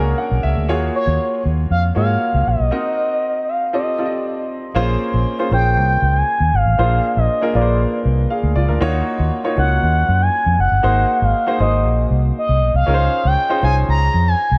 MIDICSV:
0, 0, Header, 1, 4, 480
1, 0, Start_track
1, 0, Tempo, 507185
1, 649, Time_signature, 4, 2, 24, 8
1, 13799, End_track
2, 0, Start_track
2, 0, Title_t, "Analog synth lead"
2, 0, Program_c, 0, 81
2, 0, Note_on_c, 0, 80, 108
2, 418, Note_off_c, 0, 80, 0
2, 900, Note_on_c, 0, 73, 112
2, 1343, Note_off_c, 0, 73, 0
2, 1619, Note_on_c, 0, 77, 105
2, 1726, Note_off_c, 0, 77, 0
2, 1865, Note_on_c, 0, 77, 98
2, 2343, Note_on_c, 0, 75, 113
2, 2357, Note_off_c, 0, 77, 0
2, 3303, Note_on_c, 0, 77, 92
2, 3317, Note_off_c, 0, 75, 0
2, 3540, Note_off_c, 0, 77, 0
2, 3545, Note_on_c, 0, 75, 89
2, 4224, Note_off_c, 0, 75, 0
2, 5236, Note_on_c, 0, 79, 107
2, 5839, Note_on_c, 0, 80, 107
2, 5853, Note_off_c, 0, 79, 0
2, 6194, Note_on_c, 0, 77, 106
2, 6209, Note_off_c, 0, 80, 0
2, 6795, Note_on_c, 0, 75, 96
2, 6809, Note_off_c, 0, 77, 0
2, 7146, Note_off_c, 0, 75, 0
2, 7153, Note_on_c, 0, 74, 72
2, 7592, Note_off_c, 0, 74, 0
2, 9070, Note_on_c, 0, 78, 94
2, 9669, Note_on_c, 0, 80, 106
2, 9683, Note_off_c, 0, 78, 0
2, 10022, Note_off_c, 0, 80, 0
2, 10035, Note_on_c, 0, 78, 110
2, 10634, Note_on_c, 0, 77, 102
2, 10648, Note_off_c, 0, 78, 0
2, 10985, Note_off_c, 0, 77, 0
2, 10989, Note_on_c, 0, 75, 73
2, 11429, Note_off_c, 0, 75, 0
2, 11719, Note_on_c, 0, 75, 83
2, 12042, Note_off_c, 0, 75, 0
2, 12074, Note_on_c, 0, 77, 97
2, 12554, Note_on_c, 0, 79, 102
2, 12568, Note_off_c, 0, 77, 0
2, 12904, Note_off_c, 0, 79, 0
2, 12912, Note_on_c, 0, 80, 83
2, 13016, Note_off_c, 0, 80, 0
2, 13151, Note_on_c, 0, 82, 114
2, 13512, Note_on_c, 0, 80, 96
2, 13526, Note_off_c, 0, 82, 0
2, 13799, Note_off_c, 0, 80, 0
2, 13799, End_track
3, 0, Start_track
3, 0, Title_t, "Grand piano"
3, 0, Program_c, 1, 0
3, 0, Control_c, 1, 64, 127
3, 0, Note_on_c, 1, 58, 82
3, 0, Note_on_c, 1, 61, 57
3, 0, Note_on_c, 1, 62, 70
3, 0, Note_on_c, 1, 66, 71
3, 0, Note_on_c, 1, 68, 73
3, 0, Note_on_c, 1, 70, 93
3, 0, Note_on_c, 1, 73, 93
3, 0, Note_on_c, 1, 80, 63
3, 152, Note_off_c, 1, 80, 0
3, 169, Note_on_c, 1, 78, 75
3, 393, Note_off_c, 1, 78, 0
3, 408, Note_on_c, 1, 76, 78
3, 582, Note_off_c, 1, 58, 0
3, 583, Note_off_c, 1, 66, 0
3, 585, Note_off_c, 1, 68, 0
3, 587, Note_off_c, 1, 70, 0
3, 610, Note_off_c, 1, 62, 0
3, 632, Note_off_c, 1, 76, 0
3, 647, Note_on_c, 1, 58, 84
3, 651, Note_on_c, 1, 65, 86
3, 651, Note_on_c, 1, 66, 85
3, 656, Note_off_c, 1, 73, 0
3, 656, Note_on_c, 1, 68, 86
3, 656, Note_on_c, 1, 73, 97
3, 660, Control_c, 1, 64, 0
3, 664, Note_off_c, 1, 61, 0
3, 820, Control_c, 1, 64, 127
3, 1523, Note_off_c, 1, 58, 0
3, 1525, Note_off_c, 1, 65, 0
3, 1525, Note_off_c, 1, 66, 0
3, 1527, Note_off_c, 1, 73, 0
3, 1528, Note_off_c, 1, 68, 0
3, 1843, Note_on_c, 1, 58, 72
3, 1849, Note_on_c, 1, 65, 63
3, 1852, Note_on_c, 1, 66, 61
3, 1853, Note_on_c, 1, 68, 64
3, 1855, Note_on_c, 1, 73, 71
3, 2504, Note_off_c, 1, 58, 0
3, 2506, Note_off_c, 1, 65, 0
3, 2508, Note_off_c, 1, 66, 0
3, 2509, Note_off_c, 1, 68, 0
3, 2510, Note_off_c, 1, 73, 0
3, 2565, Note_on_c, 1, 60, 77
3, 2570, Note_on_c, 1, 63, 70
3, 2572, Note_on_c, 1, 66, 71
3, 2574, Note_on_c, 1, 70, 71
3, 2576, Note_on_c, 1, 75, 80
3, 2585, Control_c, 1, 64, 0
3, 2767, Control_c, 1, 64, 127
3, 3444, Note_off_c, 1, 60, 0
3, 3446, Note_off_c, 1, 63, 0
3, 3447, Note_off_c, 1, 66, 0
3, 3448, Note_off_c, 1, 70, 0
3, 3449, Note_off_c, 1, 75, 0
3, 3531, Note_on_c, 1, 60, 70
3, 3531, Note_on_c, 1, 65, 62
3, 3535, Note_on_c, 1, 67, 62
3, 3538, Note_on_c, 1, 69, 66
3, 3539, Note_on_c, 1, 75, 78
3, 3548, Control_c, 1, 64, 0
3, 3701, Control_c, 1, 64, 127
3, 3752, Note_off_c, 1, 60, 0
3, 3752, Note_off_c, 1, 65, 0
3, 3754, Note_off_c, 1, 67, 0
3, 3756, Note_off_c, 1, 69, 0
3, 3756, Note_off_c, 1, 75, 0
3, 3770, Note_on_c, 1, 60, 71
3, 3773, Note_on_c, 1, 65, 62
3, 3776, Note_on_c, 1, 67, 64
3, 3777, Note_on_c, 1, 69, 62
3, 3781, Note_on_c, 1, 74, 64
3, 3836, Note_off_c, 1, 74, 0
3, 3838, Note_on_c, 1, 75, 73
3, 4428, Note_off_c, 1, 60, 0
3, 4430, Note_off_c, 1, 65, 0
3, 4431, Note_off_c, 1, 67, 0
3, 4432, Note_off_c, 1, 69, 0
3, 4462, Note_off_c, 1, 75, 0
3, 4491, Note_on_c, 1, 58, 90
3, 4497, Note_on_c, 1, 61, 80
3, 4498, Note_on_c, 1, 65, 89
3, 4501, Note_on_c, 1, 68, 85
3, 4506, Note_on_c, 1, 72, 102
3, 4508, Control_c, 1, 64, 0
3, 4697, Control_c, 1, 64, 127
3, 5040, Note_off_c, 1, 58, 0
3, 5043, Note_off_c, 1, 61, 0
3, 5043, Note_off_c, 1, 65, 0
3, 5045, Note_off_c, 1, 68, 0
3, 5047, Note_off_c, 1, 72, 0
3, 5097, Note_on_c, 1, 58, 76
3, 5100, Note_on_c, 1, 61, 70
3, 5101, Note_on_c, 1, 65, 72
3, 5104, Note_on_c, 1, 68, 66
3, 5107, Note_on_c, 1, 72, 82
3, 5202, Note_off_c, 1, 58, 0
3, 5206, Note_off_c, 1, 65, 0
3, 5207, Note_off_c, 1, 61, 0
3, 5210, Note_off_c, 1, 68, 0
3, 5211, Note_off_c, 1, 72, 0
3, 5216, Note_on_c, 1, 58, 63
3, 5220, Note_on_c, 1, 65, 58
3, 5221, Note_on_c, 1, 61, 62
3, 5227, Note_on_c, 1, 68, 56
3, 5227, Note_on_c, 1, 72, 75
3, 6090, Note_off_c, 1, 58, 0
3, 6092, Note_off_c, 1, 61, 0
3, 6092, Note_off_c, 1, 65, 0
3, 6095, Note_off_c, 1, 68, 0
3, 6096, Note_off_c, 1, 72, 0
3, 6416, Note_on_c, 1, 58, 78
3, 6420, Note_on_c, 1, 62, 68
3, 6420, Note_on_c, 1, 65, 71
3, 6426, Note_on_c, 1, 68, 70
3, 6427, Note_on_c, 1, 72, 85
3, 6428, Control_c, 1, 64, 0
3, 6597, Control_c, 1, 64, 127
3, 6962, Note_off_c, 1, 58, 0
3, 6965, Note_off_c, 1, 62, 0
3, 6965, Note_off_c, 1, 65, 0
3, 6967, Note_off_c, 1, 68, 0
3, 6968, Note_off_c, 1, 72, 0
3, 7017, Note_on_c, 1, 58, 78
3, 7017, Note_on_c, 1, 62, 71
3, 7023, Note_on_c, 1, 65, 69
3, 7025, Note_on_c, 1, 68, 72
3, 7029, Note_on_c, 1, 70, 84
3, 7125, Note_off_c, 1, 58, 0
3, 7126, Note_off_c, 1, 62, 0
3, 7130, Note_off_c, 1, 65, 0
3, 7130, Note_off_c, 1, 68, 0
3, 7133, Note_off_c, 1, 70, 0
3, 7139, Note_on_c, 1, 58, 68
3, 7140, Note_on_c, 1, 62, 63
3, 7145, Note_on_c, 1, 65, 63
3, 7146, Note_on_c, 1, 68, 65
3, 7148, Note_on_c, 1, 71, 59
3, 7201, Note_off_c, 1, 71, 0
3, 7208, Note_on_c, 1, 72, 71
3, 7849, Note_off_c, 1, 68, 0
3, 7858, Note_on_c, 1, 77, 67
3, 7859, Note_off_c, 1, 62, 0
3, 7861, Note_off_c, 1, 65, 0
3, 7863, Note_on_c, 1, 68, 62
3, 7893, Note_off_c, 1, 72, 0
3, 8011, Note_off_c, 1, 58, 0
3, 8086, Note_off_c, 1, 77, 0
3, 8089, Note_off_c, 1, 68, 0
3, 8097, Note_on_c, 1, 74, 81
3, 8106, Note_on_c, 1, 65, 68
3, 8211, Note_off_c, 1, 74, 0
3, 8216, Note_off_c, 1, 65, 0
3, 8219, Note_on_c, 1, 70, 70
3, 8226, Note_on_c, 1, 62, 57
3, 8333, Note_on_c, 1, 58, 91
3, 8334, Note_on_c, 1, 63, 89
3, 8338, Note_on_c, 1, 65, 86
3, 8342, Note_on_c, 1, 66, 85
3, 8346, Note_on_c, 1, 73, 108
3, 8349, Control_c, 1, 64, 0
3, 8446, Note_off_c, 1, 70, 0
3, 8450, Note_off_c, 1, 62, 0
3, 8513, Control_c, 1, 64, 127
3, 8881, Note_off_c, 1, 58, 0
3, 8881, Note_off_c, 1, 63, 0
3, 8883, Note_off_c, 1, 65, 0
3, 8885, Note_off_c, 1, 66, 0
3, 8887, Note_off_c, 1, 73, 0
3, 8932, Note_on_c, 1, 58, 73
3, 8935, Note_on_c, 1, 63, 72
3, 8939, Note_on_c, 1, 65, 74
3, 8940, Note_on_c, 1, 73, 85
3, 8941, Note_on_c, 1, 66, 73
3, 9037, Note_off_c, 1, 58, 0
3, 9041, Note_off_c, 1, 63, 0
3, 9047, Note_off_c, 1, 65, 0
3, 9047, Note_off_c, 1, 66, 0
3, 9048, Note_off_c, 1, 73, 0
3, 9051, Note_on_c, 1, 58, 70
3, 9055, Note_on_c, 1, 63, 62
3, 9059, Note_on_c, 1, 61, 59
3, 9061, Note_on_c, 1, 66, 61
3, 9066, Note_on_c, 1, 73, 73
3, 9926, Note_off_c, 1, 58, 0
3, 9928, Note_off_c, 1, 63, 0
3, 9930, Note_off_c, 1, 61, 0
3, 9931, Note_off_c, 1, 66, 0
3, 9934, Note_off_c, 1, 73, 0
3, 10247, Note_on_c, 1, 58, 77
3, 10249, Note_on_c, 1, 63, 75
3, 10252, Note_on_c, 1, 66, 74
3, 10256, Note_on_c, 1, 68, 72
3, 10257, Note_on_c, 1, 72, 86
3, 10269, Control_c, 1, 64, 0
3, 10418, Control_c, 1, 64, 127
3, 10797, Note_off_c, 1, 58, 0
3, 10798, Note_off_c, 1, 63, 0
3, 10799, Note_off_c, 1, 66, 0
3, 10801, Note_off_c, 1, 68, 0
3, 10802, Note_off_c, 1, 72, 0
3, 10850, Note_on_c, 1, 58, 79
3, 10852, Note_on_c, 1, 63, 70
3, 10856, Note_on_c, 1, 66, 68
3, 10858, Note_on_c, 1, 68, 74
3, 10862, Note_on_c, 1, 72, 82
3, 10955, Note_off_c, 1, 58, 0
3, 10959, Note_off_c, 1, 63, 0
3, 10961, Note_off_c, 1, 66, 0
3, 10965, Note_off_c, 1, 68, 0
3, 10965, Note_off_c, 1, 72, 0
3, 10969, Note_on_c, 1, 58, 69
3, 10973, Note_on_c, 1, 63, 61
3, 10975, Note_on_c, 1, 66, 60
3, 10979, Note_on_c, 1, 72, 75
3, 10980, Note_on_c, 1, 68, 60
3, 11845, Note_off_c, 1, 58, 0
3, 11846, Note_off_c, 1, 63, 0
3, 11848, Note_off_c, 1, 66, 0
3, 11849, Note_off_c, 1, 72, 0
3, 11850, Note_off_c, 1, 68, 0
3, 12173, Note_on_c, 1, 61, 82
3, 12175, Note_on_c, 1, 63, 66
3, 12179, Note_on_c, 1, 65, 69
3, 12183, Note_on_c, 1, 68, 72
3, 12185, Control_c, 1, 64, 0
3, 12188, Note_on_c, 1, 70, 74
3, 12239, Note_off_c, 1, 70, 0
3, 12246, Note_on_c, 1, 72, 85
3, 12327, Control_c, 1, 64, 127
3, 12719, Note_off_c, 1, 61, 0
3, 12720, Note_off_c, 1, 63, 0
3, 12722, Note_off_c, 1, 65, 0
3, 12724, Note_off_c, 1, 68, 0
3, 12755, Note_off_c, 1, 72, 0
3, 12769, Note_on_c, 1, 61, 78
3, 12771, Note_on_c, 1, 63, 70
3, 12774, Note_on_c, 1, 65, 69
3, 12778, Note_on_c, 1, 68, 67
3, 12779, Note_on_c, 1, 72, 83
3, 12872, Note_off_c, 1, 61, 0
3, 12877, Note_off_c, 1, 63, 0
3, 12880, Note_off_c, 1, 65, 0
3, 12882, Note_off_c, 1, 68, 0
3, 12885, Note_off_c, 1, 72, 0
3, 12886, Note_on_c, 1, 61, 64
3, 12891, Note_on_c, 1, 63, 59
3, 12894, Note_on_c, 1, 65, 62
3, 12896, Note_on_c, 1, 68, 58
3, 12899, Note_on_c, 1, 72, 74
3, 13762, Note_off_c, 1, 61, 0
3, 13765, Note_off_c, 1, 63, 0
3, 13766, Note_off_c, 1, 65, 0
3, 13767, Note_off_c, 1, 68, 0
3, 13769, Note_off_c, 1, 72, 0
3, 13799, End_track
4, 0, Start_track
4, 0, Title_t, "Fingered electric bass"
4, 0, Program_c, 2, 33
4, 0, Note_on_c, 2, 37, 87
4, 117, Note_off_c, 2, 37, 0
4, 294, Note_on_c, 2, 35, 83
4, 385, Note_off_c, 2, 35, 0
4, 413, Note_on_c, 2, 37, 73
4, 504, Note_off_c, 2, 37, 0
4, 533, Note_on_c, 2, 38, 73
4, 653, Note_off_c, 2, 38, 0
4, 653, Note_on_c, 2, 39, 84
4, 837, Note_off_c, 2, 39, 0
4, 1013, Note_on_c, 2, 39, 100
4, 1104, Note_off_c, 2, 39, 0
4, 1374, Note_on_c, 2, 39, 88
4, 1558, Note_off_c, 2, 39, 0
4, 1612, Note_on_c, 2, 41, 88
4, 1797, Note_off_c, 2, 41, 0
4, 1854, Note_on_c, 2, 44, 83
4, 2039, Note_off_c, 2, 44, 0
4, 2215, Note_on_c, 2, 37, 87
4, 2307, Note_off_c, 2, 37, 0
4, 2336, Note_on_c, 2, 34, 76
4, 2427, Note_off_c, 2, 34, 0
4, 2456, Note_on_c, 2, 35, 72
4, 2548, Note_off_c, 2, 35, 0
4, 4498, Note_on_c, 2, 34, 99
4, 4682, Note_off_c, 2, 34, 0
4, 4861, Note_on_c, 2, 34, 95
4, 4952, Note_off_c, 2, 34, 0
4, 5216, Note_on_c, 2, 34, 95
4, 5457, Note_off_c, 2, 34, 0
4, 5457, Note_on_c, 2, 36, 90
4, 5642, Note_off_c, 2, 36, 0
4, 5697, Note_on_c, 2, 37, 93
4, 5882, Note_off_c, 2, 37, 0
4, 6058, Note_on_c, 2, 39, 74
4, 6150, Note_off_c, 2, 39, 0
4, 6181, Note_on_c, 2, 32, 74
4, 6272, Note_off_c, 2, 32, 0
4, 6300, Note_on_c, 2, 33, 74
4, 6392, Note_off_c, 2, 33, 0
4, 6423, Note_on_c, 2, 34, 103
4, 6606, Note_off_c, 2, 34, 0
4, 6782, Note_on_c, 2, 34, 104
4, 6873, Note_off_c, 2, 34, 0
4, 7142, Note_on_c, 2, 34, 83
4, 7418, Note_off_c, 2, 34, 0
4, 7619, Note_on_c, 2, 36, 86
4, 7804, Note_off_c, 2, 36, 0
4, 7979, Note_on_c, 2, 38, 96
4, 8071, Note_off_c, 2, 38, 0
4, 8097, Note_on_c, 2, 37, 88
4, 8189, Note_off_c, 2, 37, 0
4, 8221, Note_on_c, 2, 38, 73
4, 8312, Note_off_c, 2, 38, 0
4, 8341, Note_on_c, 2, 39, 113
4, 8524, Note_off_c, 2, 39, 0
4, 8701, Note_on_c, 2, 39, 100
4, 8792, Note_off_c, 2, 39, 0
4, 9061, Note_on_c, 2, 37, 95
4, 9244, Note_off_c, 2, 37, 0
4, 9300, Note_on_c, 2, 39, 98
4, 9483, Note_off_c, 2, 39, 0
4, 9542, Note_on_c, 2, 42, 96
4, 9725, Note_off_c, 2, 42, 0
4, 9899, Note_on_c, 2, 41, 74
4, 9990, Note_off_c, 2, 41, 0
4, 10017, Note_on_c, 2, 30, 82
4, 10109, Note_off_c, 2, 30, 0
4, 10137, Note_on_c, 2, 31, 73
4, 10229, Note_off_c, 2, 31, 0
4, 10256, Note_on_c, 2, 32, 98
4, 10440, Note_off_c, 2, 32, 0
4, 10615, Note_on_c, 2, 32, 94
4, 10707, Note_off_c, 2, 32, 0
4, 10976, Note_on_c, 2, 32, 88
4, 11217, Note_off_c, 2, 32, 0
4, 11217, Note_on_c, 2, 34, 93
4, 11401, Note_off_c, 2, 34, 0
4, 11455, Note_on_c, 2, 36, 90
4, 11640, Note_off_c, 2, 36, 0
4, 11818, Note_on_c, 2, 36, 86
4, 11934, Note_off_c, 2, 36, 0
4, 11934, Note_on_c, 2, 35, 78
4, 12027, Note_off_c, 2, 35, 0
4, 12056, Note_on_c, 2, 36, 76
4, 12148, Note_off_c, 2, 36, 0
4, 12184, Note_on_c, 2, 37, 99
4, 12365, Note_off_c, 2, 37, 0
4, 12539, Note_on_c, 2, 37, 91
4, 12629, Note_off_c, 2, 37, 0
4, 12895, Note_on_c, 2, 36, 83
4, 13079, Note_off_c, 2, 36, 0
4, 13139, Note_on_c, 2, 37, 94
4, 13322, Note_off_c, 2, 37, 0
4, 13381, Note_on_c, 2, 41, 89
4, 13563, Note_off_c, 2, 41, 0
4, 13735, Note_on_c, 2, 36, 85
4, 13799, Note_off_c, 2, 36, 0
4, 13799, End_track
0, 0, End_of_file